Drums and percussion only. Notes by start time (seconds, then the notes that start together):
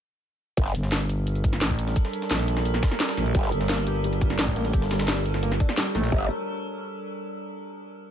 0.57 kick, closed hi-hat
0.66 snare
0.75 closed hi-hat
0.83 snare, closed hi-hat
0.92 snare, closed hi-hat
1.01 closed hi-hat
1.09 closed hi-hat
1.27 closed hi-hat
1.35 closed hi-hat
1.44 kick, closed hi-hat
1.53 snare, closed hi-hat
1.61 snare, closed hi-hat
1.70 kick
1.79 closed hi-hat
1.87 snare, closed hi-hat
1.96 kick, closed hi-hat
2.05 snare
2.13 closed hi-hat
2.22 snare, closed hi-hat
2.31 snare, closed hi-hat, open hi-hat
2.39 snare
2.48 closed hi-hat
2.57 snare
2.65 closed hi-hat
2.74 snare, closed hi-hat
2.83 kick, snare, closed hi-hat
2.91 snare, closed hi-hat
3.00 snare, closed hi-hat
3.09 snare, closed hi-hat
3.17 snare, closed hi-hat
3.26 closed hi-hat
3.35 kick, closed hi-hat
3.43 snare
3.52 closed hi-hat
3.61 snare, closed hi-hat
3.69 snare, closed hi-hat
3.78 closed hi-hat
3.87 closed hi-hat
4.04 closed hi-hat
4.13 closed hi-hat
4.21 kick, closed hi-hat
4.30 snare, closed hi-hat
4.39 snare, closed hi-hat
4.47 kick
4.56 closed hi-hat
4.65 snare, closed hi-hat
4.73 kick, closed hi-hat
4.82 snare
4.91 snare, closed hi-hat
4.99 snare, closed hi-hat
5.08 snare, closed hi-hat, open hi-hat
5.17 snare
5.25 closed hi-hat
5.34 snare
5.43 closed hi-hat
5.51 snare, closed hi-hat
5.60 kick, closed hi-hat
5.69 snare, closed hi-hat
5.77 snare, closed hi-hat
5.95 snare, closed hi-hat
6.04 snare, closed hi-hat
6.12 kick